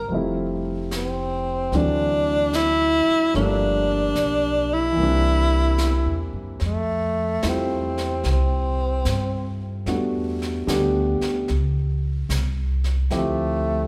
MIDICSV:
0, 0, Header, 1, 6, 480
1, 0, Start_track
1, 0, Key_signature, -1, "major"
1, 0, Tempo, 811908
1, 57, Time_signature, 4, 2, 24, 8
1, 8202, End_track
2, 0, Start_track
2, 0, Title_t, "Tenor saxophone"
2, 0, Program_c, 0, 66
2, 0, Note_on_c, 0, 70, 81
2, 64, Note_off_c, 0, 70, 0
2, 565, Note_on_c, 0, 60, 68
2, 1045, Note_on_c, 0, 62, 89
2, 1054, Note_off_c, 0, 60, 0
2, 1513, Note_on_c, 0, 64, 89
2, 1522, Note_off_c, 0, 62, 0
2, 1983, Note_off_c, 0, 64, 0
2, 1987, Note_on_c, 0, 62, 79
2, 2802, Note_on_c, 0, 64, 82
2, 2811, Note_off_c, 0, 62, 0
2, 3756, Note_off_c, 0, 64, 0
2, 3934, Note_on_c, 0, 57, 61
2, 4424, Note_on_c, 0, 60, 55
2, 4433, Note_off_c, 0, 57, 0
2, 4886, Note_off_c, 0, 60, 0
2, 4914, Note_on_c, 0, 60, 59
2, 5668, Note_off_c, 0, 60, 0
2, 7783, Note_on_c, 0, 57, 52
2, 8202, Note_off_c, 0, 57, 0
2, 8202, End_track
3, 0, Start_track
3, 0, Title_t, "Grand piano"
3, 0, Program_c, 1, 0
3, 0, Control_c, 1, 64, 127
3, 0, Note_on_c, 1, 58, 49
3, 0, Note_on_c, 1, 60, 39
3, 0, Note_on_c, 1, 61, 58
3, 48, Note_on_c, 1, 53, 43
3, 54, Note_on_c, 1, 55, 41
3, 62, Note_off_c, 1, 58, 0
3, 62, Note_off_c, 1, 61, 0
3, 63, Note_off_c, 1, 60, 0
3, 65, Control_c, 1, 64, 0
3, 70, Note_on_c, 1, 57, 44
3, 72, Note_on_c, 1, 60, 41
3, 86, Note_on_c, 1, 64, 53
3, 170, Control_c, 1, 64, 127
3, 1015, Note_off_c, 1, 53, 0
3, 1018, Note_off_c, 1, 55, 0
3, 1020, Note_off_c, 1, 57, 0
3, 1024, Note_off_c, 1, 60, 0
3, 1024, Note_on_c, 1, 52, 53
3, 1027, Note_on_c, 1, 54, 44
3, 1028, Control_c, 1, 64, 0
3, 1029, Note_on_c, 1, 57, 45
3, 1033, Note_on_c, 1, 60, 43
3, 1034, Note_off_c, 1, 64, 0
3, 1034, Note_on_c, 1, 62, 51
3, 1140, Control_c, 1, 64, 127
3, 1972, Note_on_c, 1, 53, 51
3, 1974, Note_off_c, 1, 57, 0
3, 1976, Note_off_c, 1, 62, 0
3, 1981, Note_on_c, 1, 55, 48
3, 1983, Note_on_c, 1, 57, 46
3, 1984, Note_off_c, 1, 52, 0
3, 1984, Note_on_c, 1, 58, 50
3, 1985, Note_off_c, 1, 54, 0
3, 1985, Note_on_c, 1, 62, 56
3, 1988, Note_off_c, 1, 60, 0
3, 1989, Control_c, 1, 64, 0
3, 2076, Control_c, 1, 64, 127
3, 2911, Note_on_c, 1, 52, 51
3, 2922, Note_off_c, 1, 55, 0
3, 2931, Note_on_c, 1, 55, 42
3, 2933, Note_off_c, 1, 58, 0
3, 2938, Note_off_c, 1, 53, 0
3, 2942, Note_on_c, 1, 58, 44
3, 2944, Note_off_c, 1, 57, 0
3, 2945, Note_off_c, 1, 62, 0
3, 2952, Control_c, 1, 64, 0
3, 2965, Note_on_c, 1, 60, 46
3, 2977, Note_on_c, 1, 62, 54
3, 3039, Control_c, 1, 64, 127
3, 3891, Note_off_c, 1, 52, 0
3, 3900, Note_off_c, 1, 55, 0
3, 3906, Note_off_c, 1, 58, 0
3, 3915, Control_c, 1, 64, 0
3, 3917, Note_off_c, 1, 60, 0
3, 3923, Note_off_c, 1, 62, 0
3, 4008, Control_c, 1, 64, 127
3, 4392, Note_on_c, 1, 57, 42
3, 4392, Note_on_c, 1, 60, 39
3, 4393, Note_on_c, 1, 64, 49
3, 4393, Note_on_c, 1, 65, 46
3, 4394, Note_on_c, 1, 55, 39
3, 5127, Note_off_c, 1, 57, 0
3, 5127, Note_off_c, 1, 60, 0
3, 5128, Note_off_c, 1, 55, 0
3, 5128, Note_off_c, 1, 64, 0
3, 5128, Note_off_c, 1, 65, 0
3, 5836, Control_c, 1, 64, 0
3, 5836, Note_on_c, 1, 55, 43
3, 5837, Note_on_c, 1, 59, 38
3, 5838, Note_on_c, 1, 57, 37
3, 5842, Note_on_c, 1, 62, 36
3, 5844, Note_on_c, 1, 66, 46
3, 5947, Control_c, 1, 64, 127
3, 6120, Note_off_c, 1, 55, 0
3, 6121, Note_off_c, 1, 57, 0
3, 6121, Note_off_c, 1, 59, 0
3, 6123, Note_off_c, 1, 62, 0
3, 6124, Note_off_c, 1, 66, 0
3, 6309, Note_on_c, 1, 55, 55
3, 6309, Note_on_c, 1, 57, 44
3, 6313, Note_on_c, 1, 59, 48
3, 6314, Note_on_c, 1, 62, 46
3, 6318, Note_on_c, 1, 67, 58
3, 6596, Note_off_c, 1, 55, 0
3, 6596, Note_off_c, 1, 57, 0
3, 6598, Note_off_c, 1, 59, 0
3, 6598, Note_off_c, 1, 62, 0
3, 6601, Note_off_c, 1, 67, 0
3, 6792, Control_c, 1, 64, 0
3, 7751, Note_on_c, 1, 57, 40
3, 7752, Note_on_c, 1, 53, 49
3, 7752, Note_on_c, 1, 60, 45
3, 7756, Note_on_c, 1, 67, 57
3, 7757, Note_on_c, 1, 64, 40
3, 7850, Control_c, 1, 64, 127
3, 8202, Note_off_c, 1, 53, 0
3, 8202, Note_off_c, 1, 57, 0
3, 8202, Note_off_c, 1, 60, 0
3, 8202, Note_off_c, 1, 64, 0
3, 8202, Note_off_c, 1, 67, 0
3, 8202, End_track
4, 0, Start_track
4, 0, Title_t, "Upright bass"
4, 0, Program_c, 2, 32
4, 53, Note_on_c, 2, 29, 63
4, 994, Note_off_c, 2, 29, 0
4, 1016, Note_on_c, 2, 38, 72
4, 1797, Note_off_c, 2, 38, 0
4, 1977, Note_on_c, 2, 31, 70
4, 2436, Note_off_c, 2, 31, 0
4, 2454, Note_on_c, 2, 35, 62
4, 2916, Note_off_c, 2, 35, 0
4, 2940, Note_on_c, 2, 36, 73
4, 3560, Note_off_c, 2, 36, 0
4, 3579, Note_on_c, 2, 40, 47
4, 3732, Note_off_c, 2, 40, 0
4, 3743, Note_on_c, 2, 42, 50
4, 3894, Note_off_c, 2, 42, 0
4, 3907, Note_on_c, 2, 41, 65
4, 4373, Note_off_c, 2, 41, 0
4, 4394, Note_on_c, 2, 40, 70
4, 4857, Note_off_c, 2, 40, 0
4, 4874, Note_on_c, 2, 36, 70
4, 5337, Note_off_c, 2, 36, 0
4, 5352, Note_on_c, 2, 43, 69
4, 5815, Note_off_c, 2, 43, 0
4, 5829, Note_on_c, 2, 40, 62
4, 6293, Note_off_c, 2, 40, 0
4, 6309, Note_on_c, 2, 38, 75
4, 6605, Note_off_c, 2, 38, 0
4, 6795, Note_on_c, 2, 37, 66
4, 7254, Note_off_c, 2, 37, 0
4, 7267, Note_on_c, 2, 36, 81
4, 7729, Note_off_c, 2, 36, 0
4, 7747, Note_on_c, 2, 38, 67
4, 8202, Note_off_c, 2, 38, 0
4, 8202, End_track
5, 0, Start_track
5, 0, Title_t, "Muted upright bass strokes"
5, 1814, Note_on_c, 9, 29, 33
5, 1873, Note_off_c, 9, 29, 0
5, 6627, Note_on_c, 9, 29, 29
5, 6686, Note_off_c, 9, 29, 0
5, 8202, End_track
6, 0, Start_track
6, 0, Title_t, "Drums"
6, 61, Note_on_c, 9, 25, 35
6, 540, Note_on_c, 9, 38, 43
6, 540, Note_on_c, 9, 44, 48
6, 599, Note_off_c, 9, 38, 0
6, 599, Note_off_c, 9, 44, 0
6, 1017, Note_off_c, 9, 25, 0
6, 1017, Note_on_c, 9, 25, 28
6, 1017, Note_on_c, 9, 38, 22
6, 1076, Note_off_c, 9, 38, 0
6, 1497, Note_on_c, 9, 38, 41
6, 1497, Note_on_c, 9, 44, 46
6, 1556, Note_off_c, 9, 38, 0
6, 1556, Note_off_c, 9, 44, 0
6, 1974, Note_off_c, 9, 25, 0
6, 1974, Note_on_c, 9, 25, 30
6, 1974, Note_on_c, 9, 38, 23
6, 2033, Note_off_c, 9, 38, 0
6, 2457, Note_on_c, 9, 38, 41
6, 2457, Note_on_c, 9, 44, 50
6, 2516, Note_off_c, 9, 38, 0
6, 2516, Note_off_c, 9, 44, 0
6, 2940, Note_off_c, 9, 25, 0
6, 2940, Note_on_c, 9, 25, 29
6, 3417, Note_on_c, 9, 38, 35
6, 3417, Note_on_c, 9, 44, 47
6, 3476, Note_off_c, 9, 38, 0
6, 3476, Note_off_c, 9, 44, 0
6, 3900, Note_off_c, 9, 25, 0
6, 3900, Note_on_c, 9, 25, 44
6, 3900, Note_on_c, 9, 38, 33
6, 3959, Note_off_c, 9, 38, 0
6, 4390, Note_on_c, 9, 38, 50
6, 4390, Note_on_c, 9, 44, 42
6, 4449, Note_off_c, 9, 38, 0
6, 4449, Note_off_c, 9, 44, 0
6, 4715, Note_on_c, 9, 38, 33
6, 4774, Note_off_c, 9, 38, 0
6, 4869, Note_off_c, 9, 25, 0
6, 4869, Note_on_c, 9, 25, 31
6, 4869, Note_on_c, 9, 38, 33
6, 4928, Note_off_c, 9, 38, 0
6, 5351, Note_on_c, 9, 38, 44
6, 5351, Note_on_c, 9, 44, 47
6, 5410, Note_off_c, 9, 38, 0
6, 5410, Note_off_c, 9, 44, 0
6, 5831, Note_off_c, 9, 25, 0
6, 5831, Note_on_c, 9, 25, 41
6, 5831, Note_on_c, 9, 38, 35
6, 5890, Note_off_c, 9, 38, 0
6, 6158, Note_on_c, 9, 38, 30
6, 6217, Note_off_c, 9, 38, 0
6, 6316, Note_on_c, 9, 38, 48
6, 6316, Note_on_c, 9, 44, 51
6, 6375, Note_off_c, 9, 38, 0
6, 6375, Note_off_c, 9, 44, 0
6, 6629, Note_on_c, 9, 38, 31
6, 6688, Note_off_c, 9, 38, 0
6, 6788, Note_off_c, 9, 25, 0
6, 6788, Note_on_c, 9, 25, 34
6, 6788, Note_on_c, 9, 38, 33
6, 6847, Note_off_c, 9, 38, 0
6, 7270, Note_on_c, 9, 38, 50
6, 7270, Note_on_c, 9, 44, 52
6, 7330, Note_off_c, 9, 38, 0
6, 7330, Note_off_c, 9, 44, 0
6, 7591, Note_on_c, 9, 38, 34
6, 7650, Note_off_c, 9, 38, 0
6, 7747, Note_off_c, 9, 25, 0
6, 7747, Note_on_c, 9, 25, 46
6, 7747, Note_on_c, 9, 38, 38
6, 7807, Note_off_c, 9, 38, 0
6, 8202, Note_off_c, 9, 25, 0
6, 8202, End_track
0, 0, End_of_file